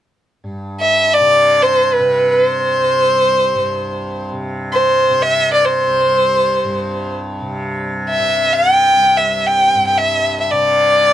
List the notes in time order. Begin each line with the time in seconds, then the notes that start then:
0.44 G2
0.81 E5
1.13 D5
1.20 C3
1.62 C5
1.93 B4
1.99 C3
2.31 B4
2.45 C5
2.76 C2
3.55 G2
4.32 C3
4.72 C5
5.10 C3
5.22 E5
5.54 D5
5.65 C5
5.86 C2
6.64 G2
7.41 C3
8.10 E5
8.19 C3
8.53 G5
8.96 C2
9.17 E5
9.46 G5
9.75 G2
9.87 G5
9.98 E5
10.41 E5
10.50 C3 D5